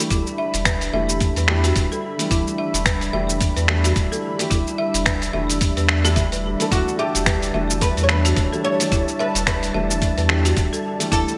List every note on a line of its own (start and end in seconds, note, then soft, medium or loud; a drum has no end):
0.00 11.38 G3 medium
0.00 11.38 D4 medium
0.00 0.10 G4 medium
0.00 11.38 E5 medium
0.00 6.70 B5 medium
0.10 0.24 E1 loud
0.10 0.26 E4 medium
0.10 kick loud
0.10 open hi-hat medium
0.10 cabasa medium
0.27 cabasa soft
0.38 0.53 E5 medium
0.54 0.90 E1 medium
0.54 open hi-hat soft
0.54 cabasa medium
0.65 0.92 B4 loud
0.65 finger snap medium
0.65 kick loud
0.65 open hi-hat medium
0.65 cabasa medium
0.81 open hi-hat soft
0.81 cabasa soft
0.93 1.33 E1 medium
0.93 1.45 E3 medium
0.93 1.46 A3 medium
0.93 1.46 D4 medium
0.93 1.46 G4 medium
0.93 1.09 E5 medium
1.09 cabasa medium
1.20 kick loud
1.20 open hi-hat medium
1.20 cabasa medium
1.36 1.73 E2 medium
1.36 1.63 B4 medium
1.36 open hi-hat soft
1.36 cabasa soft
1.48 1.63 E3 loud
1.48 1.63 A3 medium
1.48 1.63 D4 loud
1.48 1.63 G4 loud
1.48 finger snap medium
1.64 1.90 F#4 medium
1.64 open hi-hat soft
1.64 cabasa medium
1.76 1.89 D1 medium
1.76 kick loud
1.76 open hi-hat medium
1.76 cabasa medium
1.92 2.30 A4 medium
1.92 cabasa soft
2.17 3.10 E3 medium
2.17 3.12 G3 medium
2.17 3.10 A3 medium
2.17 3.11 D4 medium
2.17 open hi-hat soft
2.17 cabasa medium
2.31 2.44 E1 loud
2.31 2.46 E4 medium
2.31 kick loud
2.31 open hi-hat medium
2.31 cabasa medium
2.47 cabasa soft
2.58 2.74 E5 medium
2.74 3.10 E1 medium
2.74 open hi-hat soft
2.74 cabasa medium
2.86 3.12 B4 loud
2.86 finger snap medium
2.86 kick loud
2.86 open hi-hat medium
2.86 cabasa medium
3.01 open hi-hat soft
3.01 cabasa soft
3.12 3.53 E1 medium
3.12 3.65 E3 medium
3.12 3.65 A3 medium
3.12 3.66 D4 medium
3.12 3.66 G4 medium
3.12 3.29 E5 medium
3.30 cabasa medium
3.41 kick loud
3.41 open hi-hat medium
3.41 cabasa medium
3.57 3.93 E2 medium
3.57 3.83 B4 medium
3.57 open hi-hat soft
3.57 cabasa soft
3.68 4.08 E3 medium
3.68 4.08 A3 medium
3.68 4.08 D4 medium
3.68 4.09 G4 medium
3.68 finger snap medium
3.84 4.10 F#4 medium
3.84 open hi-hat soft
3.84 cabasa medium
3.96 4.10 D1 medium
3.96 kick loud
3.96 open hi-hat medium
3.96 cabasa medium
4.11 4.35 E3 medium
4.11 4.36 A3 medium
4.11 4.36 D4 medium
4.11 4.36 G4 medium
4.11 4.50 A4 medium
4.11 cabasa soft
4.38 4.49 E3 medium
4.38 4.50 A3 medium
4.38 4.50 D4 medium
4.38 4.50 G4 loud
4.38 open hi-hat soft
4.38 cabasa medium
4.50 4.65 E1 loud
4.50 4.66 E4 medium
4.50 kick loud
4.50 open hi-hat medium
4.50 cabasa medium
4.67 cabasa soft
4.78 4.94 E5 loud
4.94 5.31 E1 medium
4.94 open hi-hat soft
4.94 cabasa medium
5.06 5.32 B4 loud
5.06 finger snap medium
5.06 kick loud
5.06 open hi-hat medium
5.06 cabasa medium
5.22 open hi-hat soft
5.22 cabasa soft
5.33 5.73 E1 medium
5.33 5.86 E3 medium
5.33 5.86 A3 medium
5.33 5.86 D4 medium
5.33 5.87 G4 medium
5.33 5.49 E5 medium
5.50 open hi-hat soft
5.50 cabasa medium
5.61 kick loud
5.61 open hi-hat medium
5.61 cabasa medium
5.77 6.18 E2 medium
5.77 5.88 B4 medium
5.77 open hi-hat soft
5.77 cabasa soft
5.89 finger snap medium
6.04 6.15 E3 medium
6.04 6.15 A3 medium
6.04 6.15 D4 medium
6.04 6.15 G4 medium
6.04 6.16 G4 medium
6.04 open hi-hat soft
6.04 cabasa medium
6.16 6.56 E1 loud
6.16 6.31 E5 loud
6.16 kick loud
6.16 open hi-hat medium
6.16 cabasa medium
6.32 6.43 B4 medium
6.32 open hi-hat soft
6.32 cabasa soft
6.58 7.50 E3 medium
6.58 7.51 A3 medium
6.58 7.52 D4 medium
6.58 open hi-hat soft
6.58 cabasa medium
6.62 7.52 A4 loud
6.71 6.85 E1 loud
6.71 6.87 E4 medium
6.71 6.99 F#4 medium
6.71 11.38 A5 medium
6.71 kick loud
6.71 open hi-hat medium
6.71 cabasa medium
6.88 cabasa soft
6.99 7.84 G4 medium
6.99 7.14 E5 loud
7.15 7.51 E1 medium
7.15 open hi-hat soft
7.15 cabasa medium
7.26 7.53 B4 loud
7.26 finger snap medium
7.26 kick loud
7.26 open hi-hat medium
7.26 cabasa medium
7.42 open hi-hat soft
7.42 cabasa soft
7.53 7.94 E1 medium
7.53 8.06 E3 medium
7.53 8.06 A3 medium
7.53 8.06 D4 medium
7.53 8.07 G4 medium
7.53 7.69 E5 medium
7.70 cabasa medium
7.81 8.03 B4 loud
7.81 kick loud
7.81 open hi-hat medium
7.81 cabasa medium
7.97 8.34 E2 medium
7.97 8.23 B4 medium
7.97 open hi-hat soft
7.97 cabasa soft
8.03 8.09 C#5 medium
8.08 8.48 E3 medium
8.08 8.49 A3 medium
8.08 8.49 D4 medium
8.08 8.49 G4 medium
8.08 8.60 B4 loud
8.08 finger snap medium
8.25 8.51 F#4 medium
8.25 open hi-hat soft
8.25 cabasa medium
8.37 8.50 D1 medium
8.37 kick loud
8.37 open hi-hat medium
8.37 cabasa medium
8.52 8.76 E3 medium
8.52 8.76 A3 medium
8.52 8.76 D4 medium
8.52 8.77 G4 medium
8.52 8.90 A4 medium
8.52 cabasa soft
8.64 9.20 C#5 loud
8.79 8.90 E3 medium
8.79 8.90 A3 medium
8.79 8.91 D4 medium
8.79 8.91 G4 medium
8.79 open hi-hat soft
8.79 cabasa medium
8.92 9.05 E1 loud
8.92 9.07 E4 medium
8.92 kick loud
8.92 open hi-hat medium
8.92 cabasa soft
9.08 cabasa soft
9.19 9.46 B4 loud
9.19 9.34 E5 loud
9.35 9.71 E1 medium
9.35 open hi-hat soft
9.35 cabasa medium
9.47 9.73 B4 loud
9.47 10.81 B4 loud
9.47 finger snap medium
9.47 kick loud
9.47 open hi-hat medium
9.47 cabasa medium
9.63 open hi-hat soft
9.63 cabasa soft
9.73 10.14 E1 medium
9.73 10.26 E3 medium
9.73 10.26 A3 medium
9.73 10.26 D4 medium
9.73 10.27 G4 medium
9.73 9.89 E5 medium
9.91 cabasa medium
10.02 kick medium
10.02 open hi-hat medium
10.02 cabasa medium
10.18 10.54 E2 medium
10.18 10.44 B4 medium
10.18 open hi-hat soft
10.18 cabasa soft
10.28 10.43 E3 loud
10.28 10.43 A3 medium
10.28 10.44 D4 medium
10.28 10.44 G4 loud
10.28 finger snap medium
10.45 10.71 F#4 medium
10.45 open hi-hat soft
10.45 cabasa medium
10.57 10.70 D1 medium
10.57 kick loud
10.57 open hi-hat medium
10.57 cabasa medium
10.73 11.11 A4 medium
10.73 cabasa soft
10.98 11.38 E3 medium
10.98 11.38 A3 medium
10.98 11.38 D4 medium
10.98 open hi-hat soft
10.98 cabasa medium
11.02 11.38 G3 medium
11.12 11.25 E1 loud
11.12 11.27 E4 medium
11.12 11.38 A4 loud
11.12 kick medium
11.12 open hi-hat medium
11.12 cabasa medium
11.28 cabasa soft